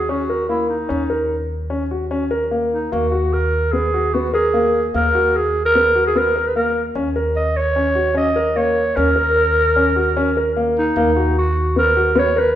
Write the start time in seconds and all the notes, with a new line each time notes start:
Already playing: D#2 G#4
0.09 C#4 F#4
0.30 A#4
0.49 A#3 E4
0.70 D#4
0.89 D#2 C#4
1.10 A#4
1.70 C#4
1.91 F#4
2.11 C#4
2.31 A#4
2.51 A#3
2.72 D#4
2.92 D#2 A#3 F#4
3.12 F#4
3.33 A#4
3.72 B3 G#4
3.94 F#4
4.14 B3 F#4
4.33 G#4 A#4
4.54 A#3
4.94 D#2 A#3 A#4
5.15 F#4
5.36 G#4
5.65 A#4
5.75 B3
5.95 F#4
6.07 G#4
6.16 B3 A#4
6.35 A#4
6.47 B4
6.56 A#3 A#4
6.95 D#2 C#4
7.16 A#4
7.36 D#5
7.57 C#5
7.76 C#4
7.95 F#4
8.15 C#4 D#5
8.36 A#4
8.56 A#3 C#5
8.96 D#2 C#4 A#4
9.16 A#4
9.76 C#4
9.96 F#4
10.17 C#4
10.37 A#4
10.57 A#3
10.78 D#4
10.96 D#2 A#3
11.16 F#4
11.38 F#4
11.76 B3 A#4
11.96 F#4
12.15 B3 C#5
12.36 A#4 B4